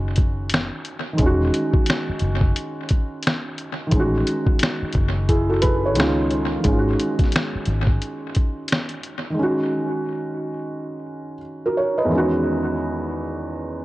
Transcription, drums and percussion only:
0.16 kick, closed hi-hat
0.49 closed hi-hat
0.54 finger snap, snare
0.85 closed hi-hat
1.18 kick, closed hi-hat
1.54 closed hi-hat
1.74 kick
1.86 finger snap, snare, closed hi-hat
2.20 closed hi-hat
2.41 kick
2.56 closed hi-hat
2.89 kick, closed hi-hat
3.22 closed hi-hat
3.27 finger snap, snare
3.58 closed hi-hat
3.91 kick, closed hi-hat
4.27 closed hi-hat
4.46 kick
4.59 finger snap, snare, closed hi-hat
4.92 kick, closed hi-hat
5.29 kick, closed hi-hat
5.62 kick, closed hi-hat
5.95 closed hi-hat
6.00 finger snap, snare
6.31 closed hi-hat
6.64 kick, closed hi-hat
7.00 closed hi-hat
7.19 kick, closed hi-hat
7.24 snare
7.32 finger snap, snare, closed hi-hat
7.66 closed hi-hat
7.87 kick
8.02 closed hi-hat
8.35 kick, closed hi-hat
8.68 closed hi-hat
8.72 finger snap, snare
8.89 closed hi-hat
9.03 closed hi-hat

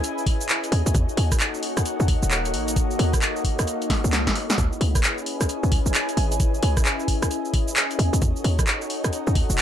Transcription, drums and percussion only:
0.04 closed hi-hat, shaker
0.18 shaker
0.26 kick, open hi-hat
0.41 shaker
0.49 clap, shaker
0.64 closed hi-hat, shaker
0.72 open hi-hat
0.86 closed hi-hat, shaker
0.95 kick, closed hi-hat, shaker
1.09 shaker
1.17 open hi-hat
1.32 kick, cross-stick, closed hi-hat, shaker
1.40 clap, shaker
1.54 shaker
1.63 open hi-hat
1.77 cross-stick, closed hi-hat, shaker
1.86 closed hi-hat, shaker
2.00 shaker
2.08 kick, open hi-hat
2.23 shaker
2.31 clap, shaker
2.45 closed hi-hat, shaker
2.54 open hi-hat
2.68 closed hi-hat, shaker
2.76 kick, closed hi-hat, shaker
2.91 shaker
2.99 open hi-hat
3.13 kick, cross-stick, closed hi-hat, shaker
3.22 clap, shaker
3.36 shaker
3.44 kick, open hi-hat
3.59 cross-stick, closed hi-hat, shaker
3.67 closed hi-hat, shaker
3.82 closed hi-hat, shaker
3.90 kick, snare, open hi-hat
4.04 shaker
4.13 snare, clap, shaker
4.27 kick, snare, closed hi-hat, shaker
4.35 open hi-hat
4.50 snare, closed hi-hat, shaker
4.58 kick, closed hi-hat, shaker
4.73 shaker
4.81 open hi-hat
4.95 kick, cross-stick, closed hi-hat, shaker
5.04 clap, shaker
5.18 shaker
5.26 open hi-hat
5.41 cross-stick, closed hi-hat, shaker
5.49 closed hi-hat, shaker
5.63 shaker
5.72 kick, open hi-hat
5.86 shaker
5.94 clap, shaker
6.09 closed hi-hat, shaker
6.17 open hi-hat
6.32 closed hi-hat, shaker
6.40 kick, closed hi-hat, shaker
6.54 shaker
6.63 open hi-hat
6.77 kick, cross-stick, closed hi-hat, shaker
6.85 clap, shaker
7.00 shaker
7.08 kick, open hi-hat
7.23 cross-stick, closed hi-hat, shaker
7.31 closed hi-hat, shaker
7.45 shaker
7.54 kick, open hi-hat
7.68 shaker
7.76 clap, shaker
7.91 closed hi-hat, shaker
7.99 open hi-hat
8.13 closed hi-hat, shaker
8.22 kick, closed hi-hat, shaker
8.36 shaker
8.44 open hi-hat
8.59 kick, cross-stick, closed hi-hat, shaker
8.67 clap, shaker
8.82 shaker
8.90 open hi-hat
9.04 cross-stick, closed hi-hat, shaker
9.13 closed hi-hat, shaker
9.27 shaker
9.35 kick, open hi-hat
9.50 shaker
9.58 clap, shaker

